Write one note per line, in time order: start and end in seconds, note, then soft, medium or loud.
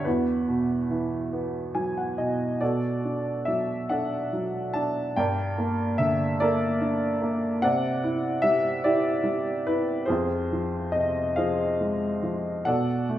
0.05 2.57 E2 medium
0.05 1.72 F#4 soft
0.05 1.70 B4 medium
0.48 2.14 B2 soft
0.90 2.57 E3 soft
1.33 2.58 B3 soft
1.75 2.59 F#3 soft
1.75 1.95 G#5 soft
1.97 2.17 F#5 soft
2.18 2.59 B2 soft
2.18 2.58 D#5 soft
2.60 5.13 B2 soft
2.60 3.88 F#4 soft
2.60 3.88 A4 soft
2.60 3.50 D5 medium
3.05 3.89 D4 soft
3.45 4.31 F#3 soft
3.45 3.91 E5 medium
3.89 4.74 D4 soft
3.89 5.14 A4 soft
3.89 5.14 D5 soft
3.89 4.78 F#5 medium
4.33 5.15 F#3 soft
4.74 5.16 D4 soft
4.74 5.18 A5 medium
5.16 7.59 G2 medium
5.16 6.37 A#4 soft
5.16 6.38 D5 soft
5.16 6.02 G5 medium
5.58 6.40 A#3 soft
5.98 7.59 D3 soft
5.98 6.41 E5 medium
6.40 7.20 A#3 medium
6.40 7.60 A4 soft
6.40 7.60 A#4 soft
6.40 7.28 D5 medium
6.81 7.61 D4 medium
7.22 7.62 A#3 soft
7.62 10.05 C3 medium
7.62 8.82 D5 medium
7.62 8.40 F#5 medium
8.04 8.83 E4 soft
8.42 9.22 G3 soft
8.42 8.81 E5 medium
8.84 9.66 E4 soft
8.84 10.06 G4 soft
8.84 9.63 D5 medium
9.24 10.06 G3 soft
9.67 10.08 E4 soft
9.67 10.06 B4 medium
10.06 11.32 F4 soft
10.06 11.32 G#4 soft
10.06 10.88 C5 medium
10.10 12.62 F2 medium
10.52 11.37 F3 soft
10.92 12.63 C3 soft
10.92 11.37 D#5 medium
11.36 12.21 F3 soft
11.36 12.62 G#4 soft
11.36 12.62 C5 soft
11.36 12.29 F5 medium
11.81 12.64 G#3 soft
12.23 12.65 F3 soft
12.65 13.19 B2 soft
12.65 13.19 A4 soft
12.65 13.19 D5 soft
12.65 13.19 F#5 medium
13.09 13.19 A3 soft